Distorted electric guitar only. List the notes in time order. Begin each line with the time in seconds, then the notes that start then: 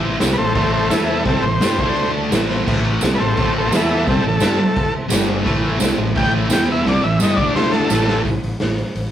Already playing: A2 E3 A3
0.19 C3 G3 C4
0.38 A2 E3
0.55 A2 E3 A3
0.89 E3 B3 E4
1.23 C3 G3 C4
1.43 A2 E3
1.61 G3 D4 G4
1.81 D3 A3 D4
2.31 A2 E3 A3
2.66 A2 E3 A3
3.03 C3 G3 C4
3.21 A2 E3
3.37 A2 E3 A3
3.71 E3 B3 E4
4.06 C3 G3 C4
4.23 A2 E3
4.41 G3 D4 G4
5.09 G2 D3 G3
5.42 A2 E3 A3
5.79 C3 G3 C4
5.99 A2 E3
6.15 A2 E3 A3
6.49 E3 B3 E4
6.85 C3 G3 C4
7.02 A2 E3
7.20 G3 D4 G4
7.38 D3 A3 D4
7.89 A2 E3 A3